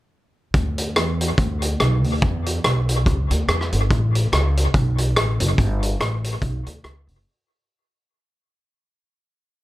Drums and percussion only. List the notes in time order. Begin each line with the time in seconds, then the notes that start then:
0.54 kick, closed hi-hat
0.78 closed hi-hat
0.96 cross-stick, closed hi-hat
1.21 closed hi-hat
1.38 kick, closed hi-hat
1.62 closed hi-hat
1.80 cross-stick, closed hi-hat
2.04 open hi-hat
2.22 kick, closed hi-hat
2.46 closed hi-hat
2.64 cross-stick, closed hi-hat
2.89 closed hi-hat
3.06 kick, closed hi-hat
3.31 closed hi-hat
3.49 cross-stick, closed hi-hat
3.61 cross-stick
3.72 closed hi-hat
3.91 kick, closed hi-hat
4.15 closed hi-hat
4.33 cross-stick, closed hi-hat
4.57 closed hi-hat
4.74 kick, closed hi-hat
4.98 closed hi-hat
5.16 cross-stick, closed hi-hat
5.40 closed hi-hat
5.58 kick, closed hi-hat
5.83 closed hi-hat
6.00 cross-stick, closed hi-hat
6.24 closed hi-hat
6.42 kick, closed hi-hat
6.66 closed hi-hat
6.84 cross-stick, closed hi-hat
7.08 open hi-hat